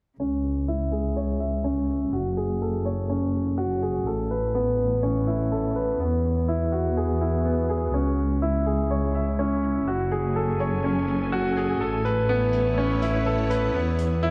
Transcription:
0.18 double bass section C#2, string section C#3, grand piano C#4
0.43 closed hi-hat
0.56 string section G#3
0.68 grand piano E4
0.92 grand piano G#4, closed hi-hat
1.06 string section E4
1.16 grand piano C#5
1.40 grand piano E5, closed hi-hat
1.64 grand piano C#4
1.89 closed hi-hat
2.13 double bass section F#1, string section F#3, grand piano F#4
2.37 grand piano G#4, closed hi-hat
2.48 string section C#4
2.62 grand piano A4
2.85 grand piano C#5, closed hi-hat
3.00 string section G#5
3.10 grand piano C#4
3.34 closed hi-hat
3.58 grand piano F#4
3.81 grand piano G#4, closed hi-hat
4.06 double bass section A1, string section A3, grand piano A4
4.31 grand piano B4, closed hi-hat
4.36 string section E4
4.55 grand piano B3
4.61 string section B4
4.79 closed hi-hat
4.93 string section C#5
5.03 grand piano C#4
5.27 grand piano E4, closed hi-hat
5.52 grand piano A4
5.75 grand piano B4, closed hi-hat
6.00 double bass section E2, string section E3, grand piano B3
6.24 closed hi-hat
6.29 string section B3 G#4
6.48 grand piano E4
6.56 string section F#4
6.72 grand piano F#4, closed hi-hat
6.97 grand piano G#4
7.20 grand piano E4, closed hi-hat
7.45 grand piano B3
7.69 grand piano G#4, closed hi-hat
7.94 double bass section C#2, string section C#3, grand piano C#4
8.14 string section G#3, closed hi-hat
8.42 grand piano E4
8.65 grand piano G#4, closed hi-hat
8.81 string section E4
8.91 grand piano C#5
9.14 grand piano E5, closed hi-hat
9.39 grand piano C#4
9.62 closed hi-hat
9.87 double bass section F#1, string section F#3, grand piano F#4
10.11 grand piano G#4, closed hi-hat
10.21 string section C#4 G#5
10.36 grand piano A4
10.59 grand piano C#5, closed hi-hat
10.74 string section A4
10.84 grand piano C#4
11.08 closed hi-hat
11.32 grand piano F#4
11.57 grand piano G#4, closed hi-hat
11.81 double bass section A1, string section A3, grand piano A4
12.05 grand piano B4, string section C#5, closed hi-hat
12.11 string section B4
12.27 grand piano B3, string section E4
12.53 closed hi-hat
12.78 grand piano C#4
13.02 grand piano E4, closed hi-hat
13.26 grand piano A4
13.50 grand piano B4, closed hi-hat
13.74 double bass section E2, string section E3, grand piano B3
13.98 closed hi-hat
14.23 grand piano E4, string section G#4

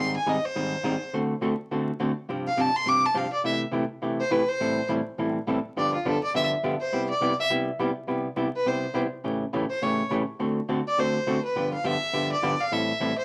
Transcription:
Already playing: hollow-body jazz guitar G#2 D#3 G3 C4 D#4 G#4
0.00 fiddle C6
0.17 fiddle G#5
0.26 hollow-body jazz guitar G#2 D#3 G3 C4 D#4 G#4, fiddle D#5
0.46 fiddle C5
0.55 hollow-body jazz guitar G#2 D#3 G3 C4 D#4 G#4
0.83 hollow-body jazz guitar G#2 D#3 G3 C4 D#4 G#4
1.14 hollow-body jazz guitar D3 A3 C4 F#4 A4
1.41 hollow-body jazz guitar D3 A3 C4 F#4 A4
1.71 hollow-body jazz guitar D3 A3 C4 F#4 A4
2.00 hollow-body jazz guitar D3 A3 C4 F#4 A4
2.29 hollow-body jazz guitar G2 C3 F3 C4 D4 G4
2.48 fiddle F5
2.57 hollow-body jazz guitar G2 C3 F3 C4 D4 G4, fiddle A5
2.76 fiddle C6
2.86 hollow-body jazz guitar G2 C3 F3 C4 D4 G4, fiddle D6
3.06 fiddle A5
3.14 hollow-body jazz guitar G2 C3 F3 C4 D4 G4, fiddle F5
3.33 fiddle D5
3.44 hollow-body jazz guitar C3 E3 A3 E4 G4, fiddle E5
3.71 hollow-body jazz guitar C3 E3 A3 E4 G4
4.02 hollow-body jazz guitar C3 E3 A3 E4 G4
4.20 fiddle C5
4.31 hollow-body jazz guitar C3 E3 A3 E4 G4, fiddle B4
4.49 fiddle C5
4.60 hollow-body jazz guitar A2 E3 G3 C4 E4 A4
4.88 hollow-body jazz guitar A2 E3 G3 C4 E4 A4
5.18 hollow-body jazz guitar A2 E3 G3 C4 E4 A4
5.47 hollow-body jazz guitar A2 E3 G3 C4 E4 A4
5.76 hollow-body jazz guitar G2 D3 F3 B3 D4 G4, fiddle D5
5.95 fiddle F4
6.05 hollow-body jazz guitar G2 D3 F3 B3 D4 G4, fiddle A4
6.24 fiddle D5
6.34 hollow-body jazz guitar G2 D3 F3 B3 D4 G4, fiddle E5
6.63 hollow-body jazz guitar G2 D3 F3 B3 D4 G4
6.81 fiddle C5
6.92 hollow-body jazz guitar C3 G3 B3 E4 G4
7.10 fiddle D5
7.21 hollow-body jazz guitar C3 G3 B3 E4 G4
7.40 fiddle E5
7.50 hollow-body jazz guitar C3 G3 B3 E4 G4
7.79 hollow-body jazz guitar C3 G3 B3 E4 G4
8.07 hollow-body jazz guitar C3 G3 B3 E4 G4
8.36 hollow-body jazz guitar C3 G3 B3 E4 G4
8.56 fiddle B4
8.66 hollow-body jazz guitar C3 G3 B3 E4 G4, fiddle C5
8.94 hollow-body jazz guitar C3 G3 B3 E4 G4
9.24 hollow-body jazz guitar A2 C#3 E3 A3 C#4 G4
9.53 hollow-body jazz guitar A2 C#3 E3 A3 C#4 G4
9.70 fiddle C5
9.82 hollow-body jazz guitar A2 C#3 E3 A3 C#4 G4, fiddle C#5
10.10 hollow-body jazz guitar A2 C#3 E3 A3 C#4 G4
10.39 hollow-body jazz guitar D3 A3 C4 F#4 A4
10.69 hollow-body jazz guitar D3 A3 C4 F#4 A4
10.88 fiddle D5
10.98 hollow-body jazz guitar D3 A3 C4 F#4 A4, fiddle C5
11.27 hollow-body jazz guitar D3 A3 C4 F#4 A4
11.45 fiddle B4
11.56 hollow-body jazz guitar G2 D3 F3 B3 D4 G4
11.74 fiddle F5
11.84 hollow-body jazz guitar G2 D3 F3 B3 D4 G4, fiddle E5
12.13 hollow-body jazz guitar G2 D3 F3 B3 D4 G4
12.33 fiddle D5
12.42 hollow-body jazz guitar G2 D3 F3 B3 D4 G4
12.61 fiddle F5
12.71 hollow-body jazz guitar A2 E3 G3 C4 E4 A4, fiddle E5
13.00 hollow-body jazz guitar A2 E3 G3 C4 E4 A4
13.19 fiddle C5

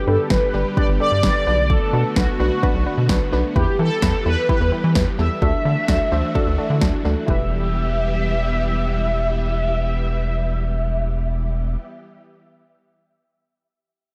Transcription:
Already playing: string machine D3 G3 B3 G4
0.07 analog synth bass G2, synth pluck D4 G4 B4, analog polysynth A4
0.30 analog synth bass G1, synth pluck D4 G4 B4, analog polysynth B4, kick, snare
0.54 analog synth bass G1, synth pluck D4 G4 B4
0.77 synth pluck D4 G4 B4, analog polysynth D5, kick
0.89 analog synth bass G1
1.00 synth pluck D4 G4 A4, analog polysynth D5
1.12 analog synth bass G2
1.23 analog synth bass G1, synth pluck D4 G4 B4, kick, snare
1.47 analog synth bass B1, string machine A3 F#4, synth pluck D4 F#4 B4
1.70 analog polysynth A4, kick
1.93 analog synth bass B2, synth pluck D4 F#4 B4
2.16 analog synth bass B1, synth pluck D4 F#4 B4, analog polysynth F#4, kick, snare
2.39 analog synth bass B1, synth pluck D4 F#4 B4, analog polysynth F#4
2.63 synth pluck D4 F#4 B4, kick
2.74 analog synth bass B1
2.86 synth pluck D4 F#4 B4
2.98 analog synth bass B2
3.09 analog synth bass B1, synth pluck D4 F#4 B4, kick, snare
3.32 analog synth bass B1, synth pluck D4 F#4 B4
3.56 analog synth bass E2, string machine E3 G3 G4, synth pluck E4 G4 B4, analog polysynth G4, kick
3.79 analog synth bass E3, synth pluck E4 G4 A4, analog polysynth A4
4.02 analog synth bass E2, synth pluck E4 G4 B4, kick, snare
4.25 analog synth bass E2, synth pluck E4 G4 B4, analog polysynth B4
4.49 synth pluck E4 G4 B4, analog polysynth B4, kick
4.61 analog synth bass E2
4.72 synth pluck E4 G4 B4
4.84 analog synth bass E3
4.95 analog synth bass E2, synth pluck E4 G4 B4, kick, snare
5.18 analog synth bass E2, synth pluck E4 G4 A4, analog polysynth E5
5.42 analog synth bass D2, string machine E3 A3 D4 F#4, synth pluck D4 F#4 A4, kick
5.65 analog synth bass D3, synth pluck D4 F#4 A4
5.88 analog synth bass D2, synth pluck D4 F#4 A4, kick, snare
6.12 analog synth bass D2, synth pluck D4 F#4 C5
6.35 synth pluck D4 F#4 A4, kick
6.47 analog synth bass D2
6.58 synth pluck D4 F#4 A4
6.70 analog synth bass D3
6.81 analog synth bass D2, synth pluck D4 F#4 A4, kick, snare
7.05 analog synth bass D2, synth pluck D4 F#4 A4
7.26 analog synth bass E1, string machine E3 G3 B3 G4, synth pluck E4 G4, analog polysynth E5, kick
7.30 synth pluck B4

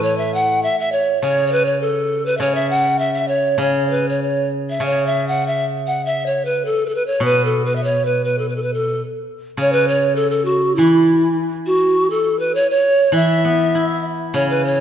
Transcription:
Already playing: guzheng A2 E3 A3
0.03 pan flute C#5
0.18 pan flute E5
0.34 pan flute F#5
0.63 pan flute E5
0.80 pan flute E5
0.92 pan flute C#5
1.22 guzheng C#3, pan flute C#5
1.47 pan flute C#5
1.52 pan flute B4
1.66 pan flute C#5
1.82 pan flute A4
2.26 pan flute B4
2.37 guzheng C#3, pan flute C#5 E5
2.55 pan flute E5
2.70 pan flute F#5
2.99 pan flute E5
3.14 pan flute E5
3.28 pan flute C#5
3.58 guzheng C#3, pan flute C#5
3.87 pan flute B4 C#5
4.09 pan flute C#5
4.23 pan flute C#5
4.70 pan flute E5
4.80 guzheng C#3
4.86 pan flute C#5
5.07 pan flute E5
5.28 pan flute F#5
5.47 pan flute E5
5.87 pan flute F#5
6.06 pan flute E5
6.26 pan flute C#5
6.45 pan flute B4
6.65 pan flute A4
6.86 pan flute A4 B4
6.95 pan flute B4
7.07 pan flute C#5
7.20 guzheng B2
7.25 pan flute B4
7.45 pan flute A4
7.65 pan flute B4
7.76 pan flute E5
7.84 pan flute C#5
8.05 pan flute B4
8.25 pan flute B4
8.39 pan flute A4
8.49 pan flute B4
8.56 pan flute A4
8.63 pan flute B4
8.74 pan flute A4
9.57 guzheng C#3, pan flute C#5
9.73 pan flute B4
9.88 pan flute C#5
10.16 pan flute A4
10.30 pan flute A4
10.45 pan flute F#4
10.75 guzheng E3, pan flute E4
11.66 pan flute F#4
12.10 pan flute A4
12.39 pan flute B4
12.55 pan flute C#5
12.70 pan flute C#5
13.12 guzheng E3, pan flute E5
13.45 guzheng B3
13.75 guzheng E4
14.34 guzheng C#3, pan flute C#5
14.50 pan flute B4
14.65 pan flute C#5

